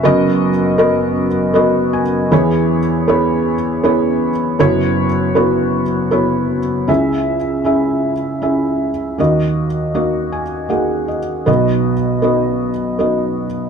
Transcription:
<<
  \new Staff \with { instrumentName = "Felt piano" } { \time 3/4 \key b \major \tempo 4 = 79 <b fis' ais' dis''>8 r8 <b fis' ais' dis''>8 r8 <b fis' ais' dis''>8 gis''8 | <b e' gis' cis''>8 r8 <b e' gis' cis''>8 r8 <b e' gis' cis''>8 r8 | <b e' fis' cis''>8 r8 <b e' fis' cis''>8 r8 <b e' fis' cis''>8 r8 | <cis' e' gis' e''>8 r8 <cis' e' gis' e''>8 r8 <cis' e' gis' e''>8 r8 |
<ais dis' fis' dis''>8 r8 <ais dis' fis' dis''>8 gis''8 <ais dis' fis' gis' fis''>8 dis''8 | <b dis' fis' dis''>8 r8 <b dis' fis' dis''>8 r8 <b dis' fis' dis''>8 r8 | }
  \new Staff \with { instrumentName = "Felt piano" } { \clef bass \time 3/4 \key b \major <fis,, fis,>2. | <e, e>2. | <fis,, fis,>2. | <cis, cis>2. |
<dis, dis>2. | <b,, b,>2. | }
>>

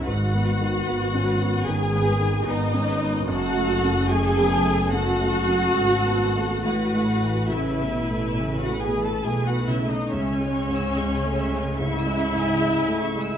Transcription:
<<
  \new Staff \with { instrumentName = "Violin section" } { \time 4/4 \key cis \minor \tempo 4 = 73 fis''2 gis''4 dis''4 | fis''4 gis''4 fis''2 | fis''4 e''4~ e''16 fis''16 gis''16 a''16 gis''16 fis''16 e''16 dis''16 | cis''2 e''2 | }
  \new Staff \with { instrumentName = "Violin section" } { \time 4/4 \key cis \minor b'8 b'8 b'8 b'8 b'8 b'8 b'8 b'8 | a'4 a'4 a'2 | b'4 b'2~ b'8. r16 | e''16 gis''16 cis'''16 e'''16 cis'''16 gis''16 e''16 gis''16 cis'''16 e'''16 cis'''16 gis''16 e''16 gis''16 cis'''16 e'''16 | }
  \new Staff \with { instrumentName = "Viola section" } { \time 4/4 \key cis \minor fis'2 gis'4 dis'4 | fis'4 gis'4 fis'2 | fis'4 e'4~ e'16 fis'16 gis'16 a'16 gis'16 fis'16 e'16 dis'16 | cis'2 e'2 | }
  \new Staff \with { instrumentName = "Grand piano" } { \time 4/4 \key cis \minor \tuplet 3/2 { gis,8 b8 dis8 b8 cis'8 b8 dis8 b8 dis8 b8 cis'8 b8 } | \tuplet 3/2 { fis,8 a8 cis8 a8 b8 a8 cis8 a8 cis8 a'8 b8 a8 } | \tuplet 3/2 { a,8 a8 e8 a8 b8 a8 e8 a8 e8 a8 b8 a8 } | \tuplet 3/2 { cis,8 gis8 gis,8 gis8 a8 gis8 gis,8 gis8 gis,8 gis8 a8 gis8 } | }
  \new Staff \with { instrumentName = "Cello section" } { \clef bass \time 4/4 \key cis \minor gis,4 gis,4 gis,4 gis,4 | fis,2. gis,4 | a,4 cis8 b,8 cis8 b,8 b,8 cis8 | cis1 | }
  \new Staff \with { instrumentName = "Double bass section" } { \clef bass \time 4/4 \key cis \minor gis,,4 gis,,4 gis,,4 gis,,4 | fis,,2. gis,,4 | a,,2. b,,8. r16 | cis,1 | }
>>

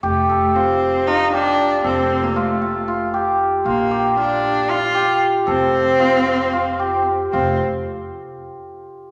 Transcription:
<<
  \new Staff \with { instrumentName = "Hammered dulcimer" } { \time 7/8 \key f \major \tempo 4 = 115 g'8 a'8 f'4 f'8 g'4 | a'4 f'8 f'8 f'8 g'4 | f'8 g'8 f'4 f'8 g'4 | a'4 f'8 f'8 f'8 g'4 |
f'8 r2. | }
  \new Staff \with { instrumentName = "Cello" } { \time 7/8 \key f \major a4 c'4 ees'8 d'4 | c'8. bes16 a4 r4. | bes4 d'4 f'4 r8 | c'2. r8 |
c'8 r2. | }
  \new Staff \with { instrumentName = "Upright bass" } { \clef bass \time 7/8 \key f \major f,,2.~ f,,8 | f,,2.~ f,,8 | bes,,2.~ bes,,8 | f,,2.~ f,,8 |
f,,8 r2. | }
>>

